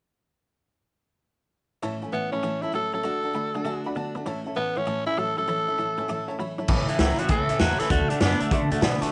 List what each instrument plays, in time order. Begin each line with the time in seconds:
1.82 steel-string acoustic guitar A2 E3 A3 C#4 E4, clean electric guitar A2 E3, upright piano C#5 E5 A5
2.02 steel-string acoustic guitar A3 C#4 E4, upright piano C#5 E5 G#5
2.12 clean electric guitar A2 E3, steel-string acoustic guitar E3 A3 C#4 E4, tenor saxophone B3, upright piano C#5 E5 G#5
2.32 clean electric guitar A2 E3, steel-string acoustic guitar A3 C#4 E4, tenor saxophone C#4, upright piano C#5 E5 A5
2.43 steel-string acoustic guitar A2 E3 A3 C#4 E4, clean electric guitar A2 E3, upright piano C#5 E5 A5
2.62 steel-string acoustic guitar A3 C#4 E4, tenor saxophone E4, upright piano C#5 E5 A5
2.72 clean electric guitar A2 F#3, steel-string acoustic guitar E3 A3 C#4 E4, tenor saxophone A4, upright piano C#5 E5 A5
2.92 clean electric guitar A2 F#3, steel-string acoustic guitar A3 C#4 E4, tenor saxophone A4, upright piano C#5 E5 A5
3.03 steel-string acoustic guitar D3 A3 D4 F#4, clean electric guitar D3 A3, upright piano D5 F#5 A5
3.22 steel-string acoustic guitar A3 D4 F#4, upright piano D5 F#5 A5
3.33 steel-string acoustic guitar D3 A3 D4 F#4, clean electric guitar D3 A3, upright piano D5 F#5 B5
3.54 clean electric guitar D3 A3, steel-string acoustic guitar A3 D4 F#4, upright piano D5 F#5 A5
3.65 clean electric guitar D3 A3, steel-string acoustic guitar D3 A3 D4 F#4, upright piano D5 F#5 G#5
3.84 steel-string acoustic guitar A3 D4 F#4, upright piano D5 F#5 B5
3.95 steel-string acoustic guitar D3 A3 D4 F#4, clean electric guitar D3 B3, upright piano D5 F#5 A5
4.15 clean electric guitar D3 B3, steel-string acoustic guitar A3 D4 F#4, upright piano D5 F#5 A5
4.26 clean electric guitar A2 E3, steel-string acoustic guitar A2 E3 A3 C#4 E4, upright piano C#5 E5 A5
4.44 steel-string acoustic guitar A3 C#4 E4, upright piano C#5 E5 A5
4.55 clean electric guitar A2 E3, steel-string acoustic guitar E3 C#4 E4, tenor saxophone B3
4.75 clean electric guitar A2 E3, steel-string acoustic guitar A3 C#4 E4, tenor saxophone C#4, upright piano C#5 E5 F#5
4.86 steel-string acoustic guitar A2 E3 A3 C#4 E4, clean electric guitar A2 E3, upright piano E5 A5
5.06 steel-string acoustic guitar A3 C#4 E4, tenor saxophone E4, upright piano C#5 E5 G#5
5.17 clean electric guitar A2 F#3, steel-string acoustic guitar E3 A3 C#4 E4, tenor saxophone A4, upright piano C#5 E5 A5
5.37 clean electric guitar A2 F#3, steel-string acoustic guitar A3 C#4 E4, tenor saxophone A4, upright piano C#5 E5
5.47 steel-string acoustic guitar A2 E3 A3 C#4 E4, clean electric guitar A2 E3, upright piano C#5 E5 A5
5.68 steel-string acoustic guitar A3 C#4 E4, upright piano C#5 E5 A5
5.78 clean electric guitar A2 E3, steel-string acoustic guitar E3 A3 C#4 E4, upright piano C#5 E5 A5
5.98 clean electric guitar A2 E3, steel-string acoustic guitar A3 C#4 E4, upright piano C#5 E5 G#5
6.08 steel-string acoustic guitar A2 E3 A3 C#4 E4, clean electric guitar A2 E3, upright piano C#5 E5 A5
6.28 steel-string acoustic guitar A3 C#4 E4, upright piano C#5 E5 A5
6.39 clean electric guitar A2 F#3, steel-string acoustic guitar E3 A3 C#4 E4, upright piano C#5 E5 B5
6.58 clean electric guitar A2 F#3, steel-string acoustic guitar A3 C#4 E4, upright piano C#5 E5 A5
6.68 upright bass A1, clean electric guitar A2 E3, steel-string acoustic guitar A2 E3 A3 C#4 E4, upright piano C#5 E5 A5, kick, crash
6.88 clean electric guitar A2 E3, steel-string acoustic guitar A3 C#4 E4, upright piano C#5 E5 A5, muted upright bass stroke, closed hi-hat
6.99 upright bass C#2, steel-string acoustic guitar A2 E3 A3 C#4 E4, clean electric guitar A2 F#3, tenor saxophone E4, upright piano C#5 A5, snare, closed hi-hat
7.18 clean electric guitar A2 E3, steel-string acoustic guitar A3 C#4 E4, tenor saxophone F#4, upright piano C#5 E5 F#5, closed hi-hat
7.29 upright bass C#2, clean electric guitar A2 E3, steel-string acoustic guitar E3 A3, tenor saxophone A4, upright piano C#5 E5 A5, kick, closed hi-hat
7.49 upright bass E2, clean electric guitar A2 E3, steel-string acoustic guitar A3 C#4 E4, upright piano C#5 E5 A5, closed hi-hat
7.59 upright bass E2, steel-string acoustic guitar A2 E3 A3 C#4 E4, clean electric guitar A2 F#3, tenor saxophone F#4, upright piano C#5 E5 A5, snare, closed hi-hat
7.79 clean electric guitar A2 E3, steel-string acoustic guitar A3 C#4 E4, tenor saxophone A4, upright piano C#5 E5 A5, muted upright bass stroke, snare, closed hi-hat
7.90 upright bass D2, steel-string acoustic guitar D3 A3 D4 F#4, clean electric guitar D3 A3, tenor saxophone F#4, upright piano D5 F#5, kick, closed hi-hat
8.09 clean electric guitar D3 A3, steel-string acoustic guitar A3 D4 F#4, tenor saxophone D4, upright piano D5 F#5 A5, muted upright bass stroke, closed hi-hat
8.21 upright bass F#2, steel-string acoustic guitar D3 A3 D4 F#4, clean electric guitar D3 B3, tenor saxophone D4, snare, closed hi-hat
8.39 clean electric guitar D3 A3, steel-string acoustic guitar A3 D4 F#4, upright piano D5 F#5 A5, muted upright bass stroke, closed hi-hat
8.51 upright bass F#2, steel-string acoustic guitar D3 D4 F#4, clean electric guitar D3 A3, upright piano D5 F#5 A5, kick, closed hi-hat
8.70 upright bass A2, clean electric guitar D3 A3, steel-string acoustic guitar A3 D4 F#4, upright piano D5 F#5 A5, closed hi-hat
8.81 upright bass B2, steel-string acoustic guitar D3 A3 D4 F#4, clean electric guitar D3 B3, upright piano D5 F#5 A5, snare, closed hi-hat
9.01 clean electric guitar D3 A3, steel-string acoustic guitar A3 D4 F#4, upright piano D5 F#5 A5, muted upright bass stroke, snare, closed hi-hat